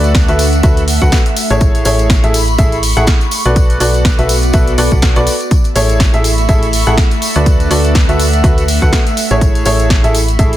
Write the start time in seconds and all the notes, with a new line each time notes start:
Already playing: D2 A3 D4 F#4 A4 B4 D5 E5 F#5 C#6
0.04 closed hi-hat, tambourine
0.15 kick, snare, closed hi-hat, tambourine
0.28 D2 F#4 A4 B4 E5, closed hi-hat, tambourine
0.39 open hi-hat, tambourine
0.53 closed hi-hat, tambourine
0.63 D2 F#4 A4 B4 E5, kick, closed hi-hat, tambourine
0.77 closed hi-hat, tambourine
0.88 open hi-hat, tambourine
1.02 D2 F#4 A4 B4 F#5, kick, closed hi-hat, tambourine
1.12 kick, snare, closed hi-hat, tambourine
1.26 closed hi-hat, tambourine
1.36 open hi-hat, tambourine
1.50 A1 E4 G#4 A4 C#5, closed hi-hat, tambourine
1.61 kick, closed hi-hat, tambourine
1.75 closed hi-hat, tambourine
1.85 A1 E4 G#4 A4 C#5, open hi-hat, tambourine
1.93 B5
1.99 closed hi-hat, tambourine
2.10 kick, snare, closed hi-hat, tambourine
2.24 A1 E4 G#4 A4 E5, closed hi-hat, tambourine
2.29 C#6
2.34 open hi-hat, tambourine
2.48 closed hi-hat, tambourine
2.58 A1 E4 G#4 A4 E5, kick, closed hi-hat, tambourine
2.72 closed hi-hat, tambourine
2.83 open hi-hat, tambourine
2.97 A1 E4 G#4 A4 F#5, closed hi-hat, tambourine
3.07 kick, snare, closed hi-hat, tambourine
3.21 closed hi-hat, tambourine
3.31 open hi-hat, tambourine
3.45 B1 F#4 A4 B4 D5, closed hi-hat, tambourine
3.56 B3, kick, closed hi-hat, tambourine
3.70 closed hi-hat, tambourine
3.80 B1 F#4 A4 B4 D5, open hi-hat, tambourine
3.94 closed hi-hat, tambourine
4.04 D5, kick, snare, closed hi-hat, tambourine
4.19 B1 F#4 A4 B4 E5, closed hi-hat, tambourine
4.29 open hi-hat, tambourine
4.43 closed hi-hat, tambourine
4.53 B1 F#4 A4 B4 E5, kick, closed hi-hat, tambourine
4.67 closed hi-hat, tambourine
4.78 B1 F#4 A4 B4 D5, open hi-hat, tambourine
4.91 B1 F#4 A4 B4 F#5, kick, closed hi-hat, tambourine
5.02 kick, snare, closed hi-hat, tambourine
5.16 B1 F#4 A4 B4 D5, closed hi-hat, tambourine
5.27 open hi-hat, tambourine
5.40 closed hi-hat, tambourine
5.51 A3, kick, closed hi-hat, tambourine
5.62 E5, closed hi-hat, tambourine
5.76 A1 E4 G#4 A4 C#5, open hi-hat, tambourine
5.89 closed hi-hat, tambourine
5.97 B5 C#6, kick, snare, closed hi-hat, tambourine
6.14 A1 E4 G#4 A4 E5, closed hi-hat, tambourine
6.24 open hi-hat, tambourine
6.38 closed hi-hat, tambourine
6.49 A1 E4 G#4 A4 E5, kick, closed hi-hat, tambourine
6.63 closed hi-hat, tambourine
6.73 open hi-hat, tambourine
6.86 A1 E4 G#4 A4 F#5, closed hi-hat, tambourine
6.97 kick, snare, closed hi-hat, tambourine
7.11 closed hi-hat, tambourine
7.22 D4, open hi-hat, tambourine
7.35 D2 F#4 A4 B4 D5, closed hi-hat, tambourine
7.46 kick, closed hi-hat, tambourine
7.60 closed hi-hat, tambourine
7.71 D2 F#4 A4 B4 D5 F#5, open hi-hat, tambourine
7.84 closed hi-hat, tambourine
7.95 kick, snare, closed hi-hat, tambourine
8.09 D2 F#4 A4 B4 E5, closed hi-hat, tambourine
8.19 open hi-hat, tambourine
8.33 closed hi-hat, tambourine
8.44 D2 F#4 A4 B4 E5, kick, closed hi-hat, tambourine
8.58 closed hi-hat, tambourine
8.68 open hi-hat, tambourine
8.82 D2 F#4 A4 B4 F#5, kick, closed hi-hat, tambourine
8.93 kick, snare, closed hi-hat, tambourine
9.07 closed hi-hat, tambourine
9.17 open hi-hat, tambourine
9.31 A1 E4 G#4 A4 C#5, closed hi-hat, tambourine
9.41 kick, closed hi-hat, tambourine
9.55 closed hi-hat, tambourine
9.65 A1 E4 G#4 A4 C#5, open hi-hat, tambourine
9.79 B5, closed hi-hat, tambourine
9.90 kick, snare, closed hi-hat, tambourine
10.04 A1 E4 G#4 A4 E5, closed hi-hat, tambourine
10.10 C#6
10.14 open hi-hat, tambourine
10.28 closed hi-hat, tambourine
10.39 A1 E4 G#4 A4 E5, kick, closed hi-hat, tambourine
10.53 closed hi-hat, tambourine